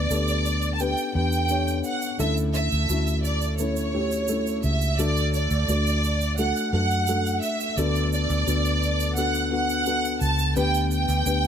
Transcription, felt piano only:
0.00 0.41 D3 medium
0.00 0.10 B3 loud
0.00 0.11 D4 medium
0.00 0.10 G4 medium
0.00 0.81 B4 loud
0.10 0.66 B3 medium
0.10 0.67 D4 medium
0.10 0.66 G4 medium
0.10 0.67 A4 medium
0.80 1.08 B3 medium
0.80 1.08 D4 medium
0.80 1.08 G4 medium
0.80 1.08 B4 medium
1.15 1.43 B3 medium
1.15 1.43 D4 medium
1.15 1.43 G4 medium
1.15 1.43 B4 medium
1.50 2.06 B3 medium
1.50 2.06 D4 medium
1.50 2.06 G4 medium
1.50 2.06 C#5 medium
2.19 3.20 D3 medium
2.19 2.75 A3 medium
2.19 2.76 C#4 medium
2.19 2.76 E4 medium
2.19 2.76 A4 loud
2.89 3.45 A3 medium
2.89 3.45 C#4 medium
2.89 3.46 E4 medium
2.89 3.46 F#4 medium
3.59 3.87 A3 medium
3.59 3.87 C#4 medium
3.59 3.87 E4 medium
3.59 3.88 A4 medium
3.94 4.22 A3 medium
3.94 4.22 C#4 medium
3.94 4.22 E4 medium
3.94 4.22 G4 medium
4.29 4.85 A3 medium
4.29 4.85 C#4 medium
4.29 4.85 E4 medium
4.29 4.85 A4 medium
4.99 5.99 D3 medium
4.99 5.55 A3 medium
4.99 5.55 D4 medium
4.99 5.55 F#4 medium
4.99 5.55 A4 loud
5.68 6.24 A3 medium
5.68 6.24 D4 medium
5.68 6.25 F#4 medium
5.68 6.25 A4 medium
6.38 6.66 A3 medium
6.38 6.66 D4 medium
6.38 6.66 F#4 medium
6.38 6.66 A4 medium
6.73 7.01 A3 medium
6.73 7.01 D4 medium
6.73 7.01 F#4 medium
6.73 7.01 A4 medium
7.08 7.64 A3 medium
7.08 7.64 D4 medium
7.08 7.64 F#4 medium
7.08 7.64 A4 medium
7.78 8.79 D3 medium
7.78 8.34 B3 medium
7.78 8.34 D4 medium
7.78 8.34 F#4 medium
7.78 8.34 A4 loud
8.47 9.03 B3 medium
8.47 9.03 D4 medium
8.47 9.03 F#4 medium
8.47 9.03 B4 medium
9.17 9.45 B3 medium
9.17 9.45 D4 medium
9.17 9.45 F#4 medium
9.17 9.45 A4 medium
9.51 9.80 B3 medium
9.51 9.80 D4 medium
9.51 9.80 F#4 medium
9.51 9.80 A4 medium
9.86 10.42 B3 medium
9.86 10.43 D4 medium
9.86 10.43 F#4 medium
9.86 10.43 A4 medium
10.56 11.47 D3 medium
10.56 11.12 B3 loud
10.56 11.12 D4 medium
10.56 11.12 G4 medium
10.56 11.12 B4 loud
11.26 11.47 B3 medium
11.26 11.47 D4 medium
11.26 11.47 G4 medium
11.26 11.47 B4 medium

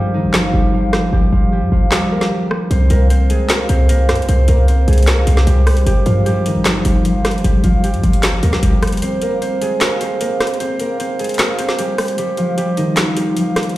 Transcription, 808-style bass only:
0.00 0.25 G2 loud
0.24 0.52 G#1 loud
0.54 1.10 G1 loud
1.13 1.32 G1 loud
1.32 1.64 G1 loud
1.62 1.72 G2 loud
1.72 1.91 G1 loud
2.71 2.90 C2 loud
2.90 3.38 C2 loud
3.69 4.10 C2 loud
4.09 4.20 G2 loud
4.19 4.28 C2 loud
4.29 4.48 C2 loud
4.48 4.86 C2 loud
4.88 5.26 C2 loud
5.27 5.46 C2 loud
5.47 5.85 C2 loud
5.87 6.05 G1 loud
6.06 6.57 G2 loud
6.56 6.84 G#1 loud
6.85 7.42 G1 loud
7.44 7.63 G1 loud
7.64 7.95 G1 loud
7.94 8.03 G2 loud
8.04 8.41 G1 loud
8.43 8.62 D2 loud
8.63 8.94 G1 loud
8.92 9.02 F1 loud

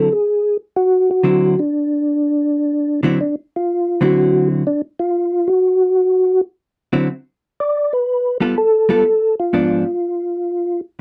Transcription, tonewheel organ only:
0.00 0.13 A4 loud
0.12 0.57 G#4 medium
0.76 1.10 F#4 loud
1.11 1.60 F#4 medium
1.59 3.01 D4 medium
3.21 3.35 D4 medium
3.56 4.05 F4 medium
4.04 4.48 F#4 medium
4.67 4.82 D4 medium
4.99 5.49 F4 loud
5.48 6.41 F#4 loud
7.60 7.94 D5 medium
7.93 8.38 B4 medium
8.58 8.90 A4 loud
8.91 9.35 A4 medium
9.40 10.81 F4 medium

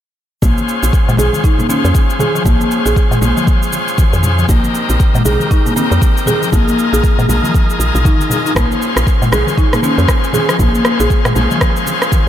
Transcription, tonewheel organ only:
0.42 1.16 C#4 medium
0.42 1.16 F4 medium
0.42 1.16 G#4 medium
0.42 1.16 C5 medium
1.19 1.67 C#4 medium
1.19 1.67 F4 medium
1.19 1.67 G#4 medium
1.19 1.67 C5 medium
1.69 2.43 C#4 medium
1.69 2.43 F4 medium
1.69 2.43 G#4 medium
1.69 2.43 C5 medium
2.45 3.19 C#4 medium
2.45 3.19 F4 medium
2.45 3.19 G#4 medium
2.45 3.19 C5 medium
3.21 4.46 C#4 medium
3.21 4.46 F4 medium
3.21 4.46 G#4 medium
3.21 4.46 C5 medium
4.49 5.23 C4 medium
4.49 5.23 D#4 medium
4.49 5.23 G4 medium
4.49 5.23 A#4 medium
5.25 5.74 C4 medium
5.25 5.74 D#4 medium
5.25 5.74 G4 medium
5.25 5.74 A#4 medium
5.76 6.50 C4 medium
5.76 6.50 D#4 medium
5.76 6.50 G4 medium
5.76 6.50 A#4 medium
6.53 7.27 D#4 medium
6.53 7.27 F4 medium
6.53 7.26 G#4 medium
6.53 7.26 A#4 medium
7.29 8.54 D#4 medium
7.29 8.54 F4 medium
7.29 8.54 G#4 medium
7.29 8.54 A#4 medium
8.56 9.30 C#4 medium
8.56 9.30 F4 medium
8.56 9.30 G#4 medium
8.56 9.30 C5 medium
9.32 9.81 C#4 medium
9.32 9.81 F4 medium
9.32 9.81 G#4 medium
9.32 9.81 C5 medium
9.83 10.57 C#4 medium
9.83 10.57 F4 medium
9.83 10.57 G#4 medium
9.83 10.57 C5 medium
10.59 11.33 C#4 medium
10.59 11.33 F4 medium
10.59 11.33 G#4 medium
10.59 11.33 C5 medium
11.35 12.29 C#4 medium
11.35 12.29 F4 medium
11.35 12.29 G#4 medium
11.35 12.29 C5 loud

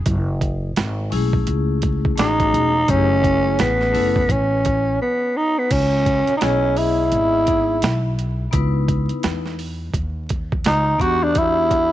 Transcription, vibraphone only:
1.10 1.19 G#3 medium
1.10 2.12 C#4 medium
1.10 2.12 E4 medium
1.10 2.13 G#4 medium
1.16 2.15 A3 medium
2.16 2.69 A3 medium
2.16 2.70 C#4 medium
2.16 2.71 F#4 medium
2.16 2.71 G#4 medium
2.86 3.88 A3 medium
2.86 3.88 C#4 medium
2.86 3.89 E4 medium
2.86 2.97 G4 medium
2.96 3.93 G#4 medium
3.92 4.20 A3 medium
3.92 4.21 C#4 medium
3.92 4.22 E4 medium
3.92 4.22 A4 medium
6.39 7.41 B3 medium
6.39 7.42 E4 medium
6.39 7.43 G#4 medium
6.39 7.41 D#5 medium
7.45 7.73 B3 medium
7.45 7.74 D#4 medium
7.45 7.75 E4 medium
7.45 7.75 G#4 medium
8.51 9.53 B3 medium
8.51 9.53 D#4 medium
8.51 9.54 E4 medium
8.51 9.54 B4 medium
10.98 11.92 B3 medium
10.98 11.92 D4 medium
10.98 11.92 F#4 medium
10.98 11.92 G4 medium

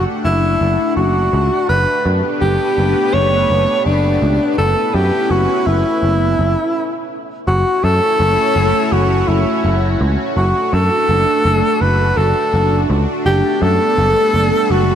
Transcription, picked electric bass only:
0.25 0.55 F#1 medium
0.61 0.76 F#1 medium
0.97 1.27 F#1 medium
1.33 1.48 C#2 loud
1.69 1.84 F#1 medium
2.06 2.21 F#2 medium
2.42 2.57 F#1 medium
2.78 2.93 F#1 medium
3.14 3.44 F#1 medium
3.50 3.65 F#1 medium
3.86 4.16 F#1 medium
4.22 4.37 C#2 loud
4.58 4.73 F#1 loud
4.94 5.10 F#2 medium
5.31 5.46 F#1 medium
5.67 5.82 F#1 medium
6.03 6.33 F#1 medium
6.39 6.54 F#1 medium
7.48 7.63 F#1 medium
7.84 7.99 F#2 medium
8.20 8.35 F#1 medium
8.56 8.71 F#1 medium
8.92 9.22 F#1 medium
9.28 9.43 F#1 medium
9.64 9.95 F#1 medium
10.01 10.16 C#2 loud
10.37 10.52 F#1 loud
10.73 10.88 F#2 medium
11.09 11.24 F#1 medium
11.45 11.60 F#1 medium
11.81 12.11 F#1 medium
12.17 12.32 F#1 medium
12.54 12.84 F#1 medium
12.90 13.05 C#2 loud
13.26 13.41 F#1 loud
13.62 13.77 F#2 medium
13.98 14.13 F#1 medium
14.34 14.49 F#1 medium
14.70 14.95 F#1 medium

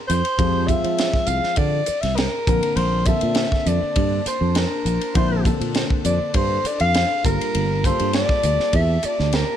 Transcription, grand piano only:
0.39 0.66 F3 medium
0.39 0.66 G#3 medium
0.39 0.66 C4 medium
0.39 0.66 G4 medium
0.69 1.77 F3 medium
0.69 1.77 G#3 medium
0.69 1.77 C4 medium
0.69 1.78 F4 medium
2.47 3.02 D3 medium
2.47 3.02 A#3 medium
2.47 3.02 C4 medium
2.47 3.02 A#4 medium
3.08 4.16 D3 medium
3.08 4.16 A#3 medium
3.08 4.16 C4 medium
3.08 4.16 A4 medium
5.15 5.42 D3 medium
5.15 5.42 A#3 medium
5.15 5.43 C4 medium
5.15 5.43 E4 medium
5.45 6.54 D3 medium
5.45 6.54 A#3 medium
5.45 6.54 C4 medium
5.45 6.55 A4 medium
7.24 7.78 G3 medium
7.24 7.79 A#3 medium
7.24 7.79 F4 medium
7.24 7.79 A#4 medium
7.85 8.93 G3 medium
7.85 8.94 A#3 medium
7.85 8.94 F4 medium
7.85 8.94 A4 medium

